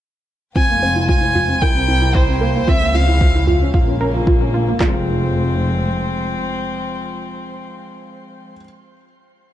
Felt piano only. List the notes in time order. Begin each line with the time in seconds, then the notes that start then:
0.56 C4
0.69 A#3
0.82 C4
0.96 E4
1.09 F4
1.21 E4
1.35 F4
1.48 C4
1.62 E4
1.75 C4
1.88 C4
2.02 E4
2.15 E4
2.28 C4
2.41 A#3
2.55 A#3
2.68 C4
2.82 A#3
2.95 C4
3.08 E4
3.21 F4
3.35 E4
3.48 F4
3.62 C#4
3.75 F4
3.88 C#4
4.01 C#4
4.14 F4
4.27 F4
4.41 C#4
4.55 A#3
4.68 A#3
4.81 F3 G#3
4.89 C4
4.93 F4